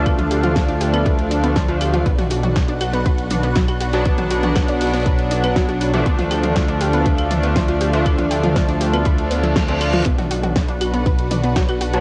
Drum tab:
RD |x-x-x---x---x---x---x---x---x-x-|x---x---x-x-x---x---x---x---x---|x-x-x---x---xxxxx---x---x---x-x-|x---x---x-x-x---x---x---x---x---|
HH |x-x-o-x-x-x-o-x-x-x-o-x-o-x-o-x-|x-x-o-x-x-x-o-x-x-x-o-x-x-x-o-x-|x-x-o-x-x-x-o-x-x-x-o-x-o-x-o-x-|x-x-o-x-x-x-o-x-x-x-o-x-x-x-o-x-|
CL |x-------------x-------------x---|------------x-------------x-----|--------x-------------x---------|----x-------------x-------------|
SD |--------o-o-------------o-------|--o-----o---------------o-------|--------o-o-oooo--------o-------|--o-----o---------------o-------|
T2 |--o---o-----------------------o-|--o---o-------------o-----------|--o---o-----------------------o-|--o---o-------------o-----------|
BD |o-------o-------o-------o-------|o-------o-------o-------o-------|o-------o-------o-------o-------|o-------o-------o-------o-------|

RD |x-x-x---x---x---x---x---x---x-x-|x---x---x-x-x---x---x---x---x---|
HH |x-x-o-x-x-x-o-x-x-x-o-x-o-x-o-x-|x-x-o-x-x-x-o-x-x-x-o-x-x-x-o-x-|
CL |x-------------x-------------x---|------------x-------------x-----|
SD |--------o-o-------------o-------|--o-----o---------------o-------|
T2 |--o---o-----------------------o-|--o---o-------------o-----------|
BD |o-------o-------o-------o-------|o-------o-------o-------o-------|